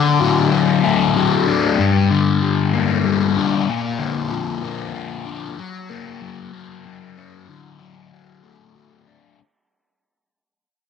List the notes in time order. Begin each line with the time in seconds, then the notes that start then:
Already playing: D3
0.20 F#3
0.52 F#3
0.84 A3
1.16 F#3
1.47 D4
1.79 G2
2.10 D3
2.42 G3
2.74 A#3
3.05 G3
3.36 D4
3.68 A#2
3.99 D3
4.30 F3
4.63 A#3
4.94 F3
5.26 D4
5.58 F#3
5.90 A#3
6.21 F#3
6.53 A#3
6.85 F#3
7.17 C#4
7.48 D3
7.80 F#3
8.12 F#3
8.43 A3
8.75 F#3
9.07 D4